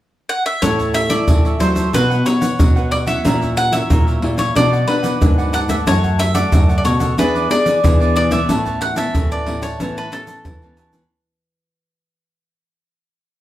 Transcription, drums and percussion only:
0.62 pandeiro, shaker, surdo
0.79 pandeiro, shaker, surdo
0.94 pandeiro, shaker
1.10 pandeiro, shaker
1.28 pandeiro, shaker, surdo
1.45 pandeiro, shaker
1.60 pandeiro, shaker, surdo
1.76 pandeiro, shaker, surdo
1.94 pandeiro, shaker, surdo
2.11 pandeiro, shaker
2.26 pandeiro, shaker
2.42 pandeiro, shaker
2.60 pandeiro, shaker, surdo
2.77 pandeiro, shaker, surdo
2.91 pandeiro
3.07 pandeiro, shaker, surdo
3.25 pandeiro, shaker, surdo
3.42 pandeiro, shaker, surdo
3.57 pandeiro, shaker
3.72 pandeiro, shaker
3.90 pandeiro, shaker, surdo
4.08 pandeiro, shaker
4.22 pandeiro, surdo
4.38 pandeiro, shaker, surdo
4.56 pandeiro, shaker, surdo
4.73 pandeiro, shaker
4.88 pandeiro
5.04 pandeiro, shaker
5.22 pandeiro, shaker, surdo
5.39 pandeiro, shaker, surdo
5.53 pandeiro, shaker
5.69 pandeiro, shaker, surdo
5.87 pandeiro, shaker, surdo
6.04 pandeiro, shaker, surdo
6.19 pandeiro, shaker
6.35 pandeiro, shaker
6.52 pandeiro, shaker, surdo
6.69 pandeiro, shaker
6.85 pandeiro, shaker
7.00 pandeiro, shaker, surdo
7.18 pandeiro, shaker, surdo
7.35 pandeiro, shaker
7.51 pandeiro, shaker
7.66 pandeiro, shaker
7.84 pandeiro, shaker, surdo
8.01 pandeiro, shaker, surdo
8.16 pandeiro
8.31 pandeiro, shaker, surdo
8.49 pandeiro, shaker, surdo
8.66 pandeiro, shaker, surdo
8.81 pandeiro
8.96 pandeiro, shaker
9.15 pandeiro, shaker, surdo
9.31 pandeiro, shaker
9.46 pandeiro, surdo
9.62 pandeiro, shaker, surdo
9.80 pandeiro, shaker, surdo
9.97 pandeiro, shaker
10.12 pandeiro, shaker
10.27 pandeiro, shaker
10.45 pandeiro, shaker, surdo
10.62 pandeiro, shaker, surdo
10.77 pandeiro, shaker
10.93 pandeiro, shaker, surdo

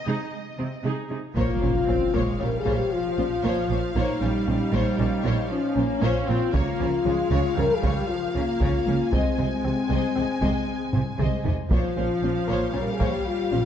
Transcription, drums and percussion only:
1.36 taiko
6.54 taiko
7.83 taiko
8.61 taiko
9.13 taiko
10.42 taiko
10.93 taiko low-mid
11.19 taiko mid
11.45 taiko low
11.71 taiko
13.00 taiko

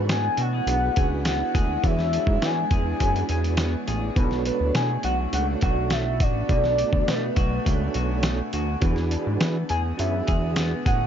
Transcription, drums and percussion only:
0.09 snare, closed hi-hat
0.37 closed hi-hat
0.67 closed hi-hat
0.96 kick, closed hi-hat
1.25 snare, closed hi-hat
1.55 kick, closed hi-hat
1.84 kick, closed hi-hat
1.99 snare
2.13 closed hi-hat
2.27 kick
2.42 snare, closed hi-hat
2.71 kick, closed hi-hat
3.00 kick, closed hi-hat
3.16 closed hi-hat
3.29 closed hi-hat
3.44 closed hi-hat
3.57 snare, closed hi-hat
3.88 closed hi-hat
4.16 kick, closed hi-hat
4.31 snare
4.45 closed hi-hat
4.75 snare, closed hi-hat
5.03 closed hi-hat
5.33 closed hi-hat
5.61 kick, closed hi-hat
5.90 snare, closed hi-hat
6.20 kick, closed hi-hat
6.49 kick, closed hi-hat
6.64 snare
6.78 closed hi-hat
6.93 kick
7.08 snare, closed hi-hat
7.36 kick, closed hi-hat
7.66 kick, closed hi-hat
7.94 closed hi-hat
8.23 snare, closed hi-hat
8.53 closed hi-hat
8.82 kick, closed hi-hat
8.96 snare
9.11 closed hi-hat
9.40 snare, closed hi-hat
9.69 closed hi-hat
9.99 closed hi-hat
10.27 kick, closed hi-hat
10.56 snare, closed hi-hat
10.86 kick, closed hi-hat

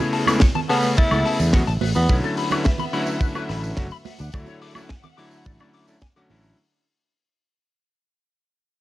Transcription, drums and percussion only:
0.13 open hi-hat
0.27 tambourine, high conga, high woodblock
0.40 kick, snare, tambourine
0.55 tambourine, low conga
0.69 open hi-hat
0.83 tambourine
0.97 kick, tambourine
1.11 tambourine, high conga, high woodblock
1.25 open hi-hat
1.39 tambourine
1.53 kick, snare, tambourine
1.67 snare, tambourine
1.81 open hi-hat, high conga
1.95 tambourine, high bongo
2.09 kick, tambourine
2.24 tambourine, high bongo
2.37 open hi-hat
2.51 tambourine, high conga, high woodblock
2.64 kick, snare, tambourine
2.78 tambourine, low conga
2.93 open hi-hat
3.06 tambourine
3.21 kick, tambourine
3.35 tambourine, high conga, high woodblock
3.49 snare, open hi-hat
3.64 tambourine
3.77 kick, snare, tambourine
3.91 tambourine
4.05 open hi-hat, high conga
4.19 tambourine, high bongo
4.32 kick, tambourine, high woodblock
4.46 tambourine, high bongo
4.62 open hi-hat
4.75 tambourine, high conga, high woodblock
4.89 kick, snare, tambourine
5.03 tambourine, low conga
5.18 open hi-hat
5.31 tambourine
5.45 kick, tambourine
5.60 tambourine, high conga, high woodblock
5.74 open hi-hat
5.88 tambourine
6.01 kick, snare, tambourine
6.16 snare, tambourine
6.30 open hi-hat, high conga
6.44 tambourine, high bongo

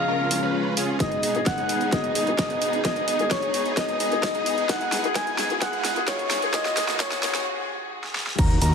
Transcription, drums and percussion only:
0.31 open hi-hat
0.77 open hi-hat
1.00 kick, snare, closed hi-hat
1.12 closed hi-hat
1.23 open hi-hat
1.35 closed hi-hat
1.46 kick, snare, closed hi-hat
1.58 closed hi-hat
1.69 open hi-hat
1.81 closed hi-hat
1.92 kick, snare, closed hi-hat
2.04 closed hi-hat
2.15 open hi-hat
2.27 closed hi-hat
2.38 kick, snare, closed hi-hat
2.50 closed hi-hat
2.62 open hi-hat
2.73 closed hi-hat
2.85 kick, snare, closed hi-hat
2.96 closed hi-hat
3.08 open hi-hat
3.19 closed hi-hat
3.31 kick, snare, closed hi-hat
3.42 closed hi-hat
3.54 open hi-hat
3.66 closed hi-hat
3.77 kick, snare, closed hi-hat
3.89 closed hi-hat
4.00 open hi-hat
4.12 closed hi-hat
4.23 kick, snare, closed hi-hat
4.35 closed hi-hat
4.46 open hi-hat
4.58 closed hi-hat
4.69 kick, snare, closed hi-hat
4.81 closed hi-hat
4.92 snare, open hi-hat
5.04 closed hi-hat
5.15 kick, snare, closed hi-hat
5.27 closed hi-hat
5.38 snare, open hi-hat
5.50 closed hi-hat
5.62 kick, snare, closed hi-hat
5.73 closed hi-hat
5.85 snare, open hi-hat
5.96 closed hi-hat
6.08 kick, snare, closed hi-hat
6.19 closed hi-hat
6.31 snare, open hi-hat
6.42 closed hi-hat
6.54 kick, snare, closed hi-hat
6.65 snare, closed hi-hat
6.77 snare, open hi-hat
6.88 snare, closed hi-hat
7.00 kick, snare, closed hi-hat
7.12 snare, closed hi-hat
7.23 snare, open hi-hat
7.35 snare, closed hi-hat
8.04 snare
8.15 snare
8.27 snare
8.39 kick, closed hi-hat, crash, cabasa
8.50 closed hi-hat
8.62 open hi-hat, cabasa

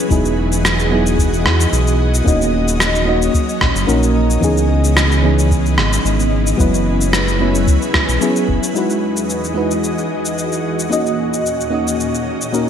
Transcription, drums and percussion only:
0.11 kick, shaker
0.25 shaker
0.52 shaker
0.65 cross-stick, shaker
0.80 shaker
1.07 shaker
1.19 kick, shaker
1.34 shaker
1.46 cross-stick
1.61 shaker
1.73 shaker
1.88 shaker
2.15 shaker
2.26 kick, shaker
2.42 shaker
2.68 shaker
2.80 cross-stick, shaker
2.95 shaker
3.22 shaker
3.34 kick, shaker
3.49 shaker
3.61 kick, cross-stick
3.76 shaker
3.89 shaker
4.03 shaker
4.31 shaker
4.43 kick, shaker
4.57 shaker
4.85 shaker
4.97 cross-stick, shaker
5.12 shaker
5.39 shaker
5.51 kick, shaker
5.66 shaker
5.78 cross-stick
5.93 shaker
6.06 shaker
6.20 shaker
6.47 shaker
6.59 kick, shaker
6.74 shaker
7.01 shaker
7.13 cross-stick, shaker
7.28 shaker
7.55 shaker
7.68 kick, shaker
7.82 shaker
7.94 kick, cross-stick
8.09 shaker
8.22 shaker
8.36 shaker
8.48 kick
8.63 shaker
8.76 shaker
8.90 shaker
9.17 shaker
9.30 shaker
9.44 shaker
9.71 shaker
9.84 shaker
9.98 shaker
10.25 shaker
10.38 shaker
10.52 shaker
10.80 shaker
10.92 shaker
11.06 shaker
11.34 shaker
11.46 shaker
11.61 shaker
11.88 shaker
12.00 shaker
12.15 shaker
12.42 shaker
12.54 shaker

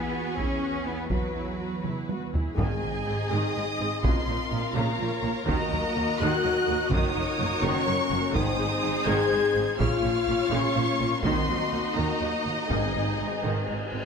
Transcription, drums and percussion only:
0.37 taiko
1.10 taiko
1.84 taiko mid
2.09 taiko high
2.34 taiko low
2.58 taiko
4.04 taiko
5.48 taiko
6.92 taiko
8.34 taiko
9.80 taiko
11.23 taiko
12.70 taiko

